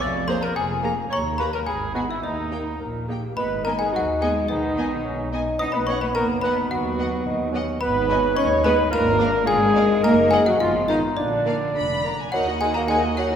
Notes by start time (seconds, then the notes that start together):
0.00 F1 F2 D5 F5 D6
0.27 A#3 G#4 C5 A#5 C6
0.41 A#4 A#5
0.56 F1 F2 G#4 G#5
0.82 A#3 G#4 A#5
1.10 D#2 C#5 A#5 C#6
1.37 A#3 G4 B4 A#5 B5
1.53 A#4 A#5
1.66 G#1 G#2 G#4 G#5 B5
1.93 B3 D#4 F#4 G#4 F#5 G#5
2.09 E4 E5
2.22 D#2 D#4 D#5 A#5
2.51 A#3 D#4 G4 G5
2.80 A#1 A#2 A#4
3.08 A#3 D#4 G4 G#4 G5
3.23 G4
3.36 G#1 G#3 B3 D#4 B4 B5
3.64 A#3 B3 A#4 D#5 G#5 A#5
3.79 G#3 G#4 G#5
3.93 D#2 F#3 F#4 F#5
4.21 G#3 B3 G#4 D#5 G#5
4.48 B1 D#3 B3 D#4 D#5
4.77 B3 D#5 G#5
5.04 B1 C#4
5.31 B3 D#4 D#5 G#5
5.59 B1 B3 D#4 D#5 D#6
5.72 B3 B4 B5
5.87 B3 C#4 C#5 D#5 F#5 C#6
6.01 B3 B4 B5
6.15 F#1 A#3 A#4 A#5
6.41 B3 B4 D#5 F#5 B5
6.69 D#2 F#3 B3 F#4 F#5
6.98 B3 D#5 F#5
7.26 D#2 D#4
7.52 B3 C#4 D#5 F#5
7.80 G#1 G#3 B3 D#4 B4 B5
8.08 G#3 C#4 D#5 G#5
8.35 D#2 C#4 D#4 C#5 C#6
8.63 G#3 B3 B4 D#5 G#5 B5
8.90 G#1 A#3 D4 F4 A#4 A#5
9.18 A#3 D4 D5 F5
9.46 G#1 G#3 F4 G#4 G#5
9.74 A#3 D#4 D5 F5
10.03 F#1 A#3 D#4 A#4 A#5
10.30 G#3 A#3 G#4 D#5 F#5 G#5
10.46 F#3 F#4 F#5
10.59 G#1 F3 B3 F4 F5
10.88 D#3 B3 D#4 D#5 F5
11.15 A#1 D3 A#3 D4 F4 D5
11.46 A#3 D5 F5
11.76 F1 B5
12.04 A#3 D5 A#5
12.20 G#5
12.32 D#2 F#3 D#4 A#4 F#5
12.46 F#4 D#5
12.60 G#3 D#4 A#4 F#5 G#5
12.74 A#3 F#4 D#5 A#5
12.88 G#3 D#4 A#4 F#5 G#5
13.03 F#4 D#5
13.17 F#3 D#4 A#4 F#5
13.32 F#4 D#5